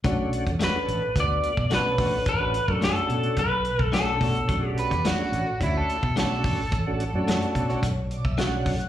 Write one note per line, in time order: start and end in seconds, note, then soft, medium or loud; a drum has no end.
0.04 0.26 B1 medium
0.04 0.21 A3 medium
0.04 0.51 A3 medium
0.04 0.51 C#4 medium
0.04 0.22 D4 medium
0.04 0.51 D4 medium
0.04 0.51 F#4 loud
0.04 0.22 F#4 medium
0.04 0.22 C#5 medium
0.04 kick loud
0.04 closed hi-hat medium
0.33 closed hi-hat medium
0.47 0.68 E2 medium
0.47 kick medium
0.47 closed hi-hat soft
0.59 0.77 A3 medium
0.59 0.77 D4 medium
0.59 0.78 F#4 medium
0.59 0.78 C#5 medium
0.59 snare loud
0.59 closed hi-hat medium
0.64 1.20 B4 medium
0.75 1.02 A3 medium
0.75 1.02 C#4 medium
0.75 1.02 D4 medium
0.75 1.02 A4 medium
0.88 0.99 A1 medium
0.88 closed hi-hat medium
1.16 1.37 D2 medium
1.16 1.53 A3 medium
1.16 1.53 B3 medium
1.16 1.53 D4 medium
1.16 1.53 F#4 medium
1.16 kick medium
1.16 closed hi-hat medium
1.20 1.74 D5 loud
1.43 closed hi-hat medium
1.57 1.90 B2 medium
1.57 kick medium
1.70 1.88 A3 medium
1.70 2.17 A3 medium
1.70 2.17 C#4 medium
1.70 1.88 D4 medium
1.70 2.18 D4 medium
1.70 1.89 F#4 medium
1.70 2.18 A4 medium
1.70 1.89 C#5 medium
1.70 snare loud
1.70 closed hi-hat medium
1.75 2.25 B4 medium
1.98 2.10 A1 medium
1.98 2.16 A3 soft
1.98 2.16 D4 medium
1.98 2.17 F#4 medium
1.98 2.17 C#5 medium
1.98 kick medium
1.98 open hi-hat medium
2.14 muted fingered electric bass stroke soft
2.26 2.59 A1 medium
2.26 2.73 B4 medium
2.26 kick loud
2.26 closed hi-hat medium
2.40 2.59 A3 medium
2.40 2.59 C#4 medium
2.40 2.59 D4 medium
2.40 2.59 F#4 medium
2.54 closed hi-hat medium
2.68 2.90 F#2 medium
2.68 3.41 A3 medium
2.68 3.41 C#4 medium
2.68 3.41 D4 medium
2.68 3.41 F#4 medium
2.68 kick medium
2.73 2.83 A4 medium
2.81 2.99 A3 medium
2.81 3.00 D4 medium
2.81 3.00 F#4 medium
2.81 3.39 A4 medium
2.81 3.00 C#5 medium
2.81 snare loud
2.81 closed hi-hat medium
2.96 closed hi-hat soft
3.09 3.21 B2 medium
3.09 closed hi-hat medium
3.23 closed hi-hat soft
3.36 3.70 B1 medium
3.36 3.93 B4 medium
3.36 kick medium
3.36 closed hi-hat medium
3.65 closed hi-hat soft
3.79 4.12 B1 medium
3.79 kick medium
3.92 4.29 A3 medium
3.92 4.10 A3 medium
3.92 4.30 C#4 medium
3.92 4.30 D4 medium
3.92 4.11 D4 medium
3.92 4.11 F#4 medium
3.92 4.30 A4 medium
3.92 4.68 A4 medium
3.92 4.11 C#5 medium
3.92 snare loud
3.92 closed hi-hat medium
4.21 4.43 B2 medium
4.21 4.38 A3 medium
4.21 4.39 D4 soft
4.21 4.39 F#4 medium
4.21 4.40 C#5 medium
4.21 kick medium
4.21 open hi-hat medium
4.35 closed hi-hat soft
4.47 4.70 B1 medium
4.47 4.94 A3 medium
4.47 4.94 C#4 medium
4.47 4.94 D4 medium
4.47 4.95 F#4 medium
4.47 kick loud
4.47 closed hi-hat medium
4.68 5.01 G4 medium
4.77 5.05 B4 medium
4.77 closed hi-hat medium
4.91 5.13 E2 medium
4.91 kick medium
4.91 closed hi-hat soft
5.05 5.22 A3 medium
5.05 5.22 D4 medium
5.05 5.23 F#4 medium
5.05 5.60 F#4 medium
5.05 5.23 C#5 medium
5.05 snare loud
5.05 closed hi-hat medium
5.19 5.46 A3 medium
5.19 5.47 C#4 medium
5.19 5.46 D4 medium
5.19 5.47 F#4 medium
5.32 5.43 A1 medium
5.32 closed hi-hat medium
5.60 5.82 D2 medium
5.60 5.97 A3 medium
5.60 5.97 C#4 medium
5.60 5.97 D4 medium
5.60 5.76 E4 medium
5.60 5.97 F#4 medium
5.60 kick medium
5.60 closed hi-hat medium
5.77 6.16 A4 medium
5.89 closed hi-hat medium
6.03 6.35 B2 medium
6.03 kick medium
6.16 6.33 A3 medium
6.16 6.62 A3 medium
6.16 6.62 C#4 medium
6.16 6.62 D4 medium
6.16 6.34 D4 medium
6.16 6.62 F#4 medium
6.16 6.34 F#4 medium
6.16 7.80 A4 medium
6.16 6.34 C#5 medium
6.16 snare loud
6.16 closed hi-hat medium
6.44 6.55 A1 medium
6.44 kick medium
6.44 open hi-hat medium
6.59 muted fingered electric bass stroke soft
6.72 7.04 A1 medium
6.72 kick loud
6.72 closed hi-hat medium
6.87 7.04 A3 medium
6.87 7.05 C#4 medium
6.87 7.05 D4 medium
6.87 7.04 F#4 medium
7.00 closed hi-hat medium
7.14 7.35 F#2 medium
7.14 7.87 A3 medium
7.14 7.87 C#4 medium
7.14 7.87 D4 medium
7.14 7.87 F#4 loud
7.28 7.45 A3 medium
7.28 7.45 D4 medium
7.28 7.45 F#4 medium
7.28 7.46 C#5 medium
7.28 snare loud
7.28 closed hi-hat medium
7.42 closed hi-hat soft
7.55 7.66 B2 medium
7.55 kick medium
7.55 closed hi-hat medium
7.70 7.87 D4 soft
7.70 7.86 F#4 medium
7.70 7.86 C#5 soft
7.70 closed hi-hat soft
7.82 8.15 B1 medium
7.82 kick medium
7.82 closed hi-hat medium
8.11 8.25 D5 medium
8.11 closed hi-hat soft
8.24 8.57 B1 medium
8.24 8.38 E5 medium
8.24 kick medium
8.38 8.55 A3 medium
8.38 8.75 A3 medium
8.38 8.75 C#4 medium
8.38 8.55 D4 medium
8.38 8.76 D4 medium
8.38 8.56 F#4 medium
8.38 8.75 F#4 medium
8.38 8.56 C#5 medium
8.38 8.89 F#5 medium
8.38 snare loud
8.38 closed hi-hat medium
8.66 8.87 B1 medium
8.66 kick medium
8.66 open hi-hat medium
8.80 closed hi-hat soft